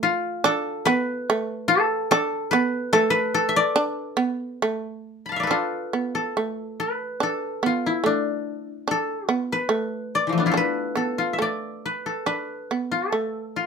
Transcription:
Already playing: A3 A4
0.03 F4
0.44 D4 A4
0.85 B3 B4
1.30 A3
1.68 A4
2.11 D4 A4
2.51 B3 B4
2.93 A3 A4
3.10 B4
3.34 A4
3.49 E5
3.56 D5
3.76 D4
4.17 B3
4.62 A3
5.26 A5 B5
5.32 F5
5.36 D5 E5
5.43 A4 B4
5.50 D4 F4
5.93 B3
6.15 A4
6.37 A3
6.80 B4
7.20 D4 A4
7.63 B3 F4
7.86 E4
8.04 A3 D4
8.88 D4 A4
9.29 B3 F4
9.52 B4
9.69 A3
10.15 D5
10.27 E3 F3
10.33 A3
10.38 B3 D4
10.46 E4 F4
10.51 D4 A4
10.57 B4
10.96 B3 A4
11.18 F4
11.33 E5
11.39 A3 D5
11.86 B4
12.06 A4
12.26 D4 B4
12.71 B3
12.92 A4
13.12 A3
13.56 F4

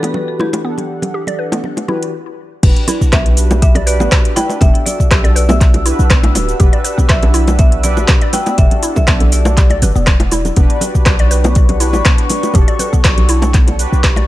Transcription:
Already playing: E3 D4 E4 F#4 G4 A4 B4 E5 B5
0.03 B3, closed hi-hat, high bongo
0.14 low bongo
0.39 E4 G4, high bongo, low bongo
0.53 closed hi-hat, high bongo
0.65 E3 B3 D4 G4 A4 F#5
0.78 closed hi-hat, low bongo
1.02 closed hi-hat, low bongo
1.14 G4
1.27 D5, closed hi-hat, low bongo
1.39 B4
1.52 B3, closed hi-hat, high bongo
1.64 low bongo
1.77 closed hi-hat, high bongo
1.88 E3 D4 E4 F#4 G4 B4, low bongo
2.03 closed hi-hat
2.62 E1 D4 F#4 G4 B4 D5 F#5 E6, kick, closed hi-hat, crash, low bongo, shaker
2.76 closed hi-hat
2.88 E4, open hi-hat, low bongo, shaker
3.01 kick, shaker
3.12 B1 B3 E5, kick, cross-stick, clap, closed hi-hat, low bongo, shaker
3.26 closed hi-hat
3.37 open hi-hat, shaker
3.51 closed hi-hat, high bongo, low bongo, shaker
3.62 G4 E5, kick, closed hi-hat, shaker
3.75 D5, closed hi-hat, low bongo
3.86 D4 F#4 G4 B4 D5, open hi-hat, shaker
4.00 A1 B3, high bongo, low bongo, shaker
4.12 kick, cross-stick, clap, closed hi-hat, shaker
4.25 closed hi-hat
4.36 E4 G5, open hi-hat, high bongo, low bongo, shaker
4.49 closed hi-hat, high bongo, shaker
4.61 E1 B3 D4 F#4 G4 A4 E5, kick, closed hi-hat, low bongo, shaker
4.75 closed hi-hat
4.86 D5, open hi-hat, low bongo, shaker
5.00 kick, shaker
5.11 B1 G4, kick, cross-stick, clap, closed hi-hat, shaker
5.24 D5, closed hi-hat, low bongo
5.36 B4 D5, open hi-hat, shaker
5.49 B3 E5, closed hi-hat, high bongo, low bongo, shaker
5.61 kick, clap, closed hi-hat, shaker
5.74 closed hi-hat, high bongo, low bongo
5.86 D4 E4 F#4 G4 B4, open hi-hat, shaker
5.99 B1, shaker
6.10 B3 D4, kick, cross-stick, clap, closed hi-hat, low bongo, shaker
6.23 closed hi-hat, high bongo
6.35 D1, open hi-hat, high bongo, low bongo, shaker
6.49 closed hi-hat, shaker
6.60 E1 D4 F#4 G4 B4, kick, closed hi-hat, low bongo, shaker
6.73 D5, closed hi-hat
6.84 B4, open hi-hat, shaker
6.98 B3, kick, low bongo, shaker
7.09 B1 E5, kick, cross-stick, clap, closed hi-hat, shaker
7.23 closed hi-hat, low bongo
7.34 E4, open hi-hat, shaker
7.47 closed hi-hat, high bongo, low bongo, shaker
7.59 B3 E5, kick, closed hi-hat, shaker
7.72 closed hi-hat
7.83 D4 F#4 G4 B4 D5, open hi-hat, low bongo, shaker
7.97 A1, high bongo, shaker
8.08 G4, kick, cross-stick, clap, closed hi-hat, low bongo, shaker
8.21 D5, closed hi-hat
8.33 B4 G5, open hi-hat, high bongo, low bongo, shaker
8.46 B3, closed hi-hat, high bongo, shaker
8.58 E1 D4 F#4 G4 A4 E5, kick, closed hi-hat, shaker
8.71 closed hi-hat, low bongo
8.83 E4, open hi-hat, shaker
8.96 E5, kick, low bongo, shaker
9.07 B1 B3, kick, cross-stick, clap, closed hi-hat, shaker
9.20 closed hi-hat, low bongo
9.32 D5, open hi-hat, shaker
9.45 closed hi-hat, high bongo, shaker
9.57 G4, kick, clap, closed hi-hat, low bongo, shaker
9.70 D5, closed hi-hat, high bongo
9.82 G1 B4, open hi-hat, low bongo, shaker
9.95 E1 B3, shaker
10.07 kick, cross-stick, clap, closed hi-hat, low bongo, shaker
10.20 closed hi-hat, high bongo
10.31 E4, open hi-hat, high bongo, shaker
10.45 closed hi-hat, low bongo, shaker
10.56 E1 B3 D4 F#4 G4 B4 C#6, kick, closed hi-hat, low bongo, shaker
10.70 closed hi-hat
10.81 open hi-hat, low bongo, shaker
10.95 kick, shaker
11.06 B1 G4, kick, cross-stick, clap, closed hi-hat, low bongo, shaker
11.19 D5, closed hi-hat
11.31 B4, open hi-hat, shaker
11.44 B3, closed hi-hat, high bongo, low bongo, shaker
11.55 kick, closed hi-hat, shaker
11.69 closed hi-hat, low bongo
11.80 D4 E4 F#4 G4 B4, open hi-hat, shaker
11.93 A1, high bongo, low bongo, shaker
12.05 B3, kick, cross-stick, clap, closed hi-hat, shaker
12.18 closed hi-hat
12.30 open hi-hat, high bongo, low bongo, shaker
12.43 closed hi-hat, high bongo, shaker
12.54 E1 D4 F#4 G4 A4, kick, closed hi-hat, low bongo, shaker
12.68 D5, closed hi-hat
12.79 B4, open hi-hat, low bongo, shaker
12.93 B3, kick, shaker
13.04 B1, kick, cross-stick, clap, closed hi-hat, shaker
13.18 closed hi-hat, low bongo
13.29 E4, open hi-hat, shaker
13.42 closed hi-hat, high bongo, low bongo, shaker
13.54 B3, kick, clap, closed hi-hat, shaker
13.67 closed hi-hat, high bongo, low bongo
13.79 D4 F#4 G4 B4, open hi-hat, shaker
13.93 B1, shaker
14.03 D4 G4 B4, kick, cross-stick, clap, closed hi-hat, low bongo, shaker
14.16 D5, closed hi-hat, high bongo

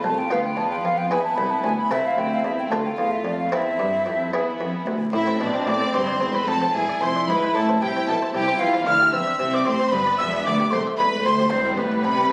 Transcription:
Already playing: A3 F4 A4 C5
0.04 C2 A5
0.18 G5
0.30 D2 B3 F4 B4 F5
0.44 G5
0.57 E2 A5
0.71 G5
0.84 F2 F5
0.98 G5
1.10 E2 B3 E4 B4 G#5
1.23 A5
1.36 C2 B5
1.50 A5
1.62 D2 G#5
1.78 B5
1.89 C2 C4 E4 A4 E5
2.06 F5
2.16 D2 G5
2.33 F5
2.43 E2 E5
2.59 G5
2.70 D2 A3 F4 A4 A5
2.86 G5
2.97 E2 F5
3.11 E5
3.24 F2 D5
3.38 F5
3.51 E2 C4 E4 A4 E5
3.78 G2
4.06 F2
4.33 E2 B3 E4 G#4
4.60 F2
4.87 D2
5.13 A1 A2 C4 E4 E5
5.27 C5
5.40 B1 B2 D4 E4 D5
5.54 C4
5.67 A1 A2 E4 D5 D6
5.80 A4
5.94 G1 G2 C4 C5 C6
6.07 D4
6.20 E1 E2 C4
6.33 B4 C5 B5
6.47 F1 F2 A4 A5
6.62 C4
6.74 E1 E2 E4 G#4 G#5
6.89 D5
7.00 F1 F2 E4 C5 C6
7.16 D4
7.27 G#1 G#2 E4 B4 B5
7.44 B4
7.54 A1 A2 A4 A5
7.69 C5
7.80 C2 C3 E4 G4 G5
7.97 C4
8.06 B1 B2 E4 A4 A5
8.22 C5
8.33 C2 C3 E4 G4 G5
8.48 C5
8.59 E2 E3 E4 F4 F5
8.74 C4
8.86 D2 D3 E4 F5 F6
9.01 G4
9.12 E2 E3 C4 E5 E6
9.27 D4
9.39 C2 C3 C4
9.52 C5 D5 D6
9.65 A1 A2 G4 C5 C6
9.80 C4
9.91 G1 G2 B3 B4 B5
10.07 D5
10.18 E1 E2 F4 E5 E6
10.33 D4
10.44 D2 F4 D5 D6
10.60 G4
10.71 C2 A3 C5 C6
10.87 E5
10.97 E1 E2 E4 B4 B5
11.24 D2 E4 C5 C6
11.40 G4
11.50 E1 E2 G3 C4 C5
11.65 E5
11.77 A1 A2 B3 G4 B4
11.92 E4
12.04 C2 C3 G4 B4 B5
12.18 B4

